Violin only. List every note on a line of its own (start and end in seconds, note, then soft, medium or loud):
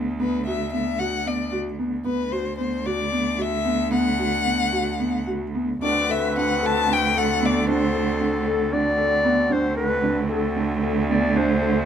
0.21 0.46 B4 medium
0.46 0.71 E5 medium
0.73 1.01 E5 medium
0.99 1.29 F#5 medium
1.27 1.54 D5 medium
2.05 2.34 B4 medium
2.32 2.58 C5 medium
2.58 2.87 C5 medium
2.86 3.43 D5 medium
3.42 3.93 E5 medium
3.94 5.24 F#5 medium
5.83 6.13 D5 medium
6.11 6.37 E5 medium
6.39 6.67 F#5 medium
6.66 6.94 A5 medium
6.93 7.19 G5 loud
7.18 7.47 F#5 medium
7.46 7.69 D5 medium
7.70 8.44 C5 medium